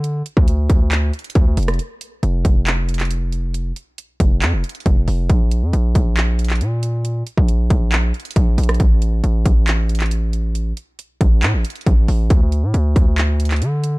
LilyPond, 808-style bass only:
\new Staff \with { instrumentName = "808-style bass" } { \clef bass \time 4/4 \key bes \lydian \tempo 4 = 137 d8 r16 d,8. d,4 r8 d,8 f,,8 | r4 f,,8 f,,2~ f,,8~ | f,,8 r4 f,,8 f,16 f,,16 r8 f,,8 f,,8 | bes,,8. f,16 bes,,8 bes,,4. bes,4~ |
bes,8 r16 bes,,8. bes,,4 r8 bes,,8 bes,,8 | a,,4 a,,8 a,,2~ a,,8~ | a,,8 r4 a,,8 a,16 a,,16 r8 a,,8 a,,8 | d,8. a,16 d,8 d,4. d4 | }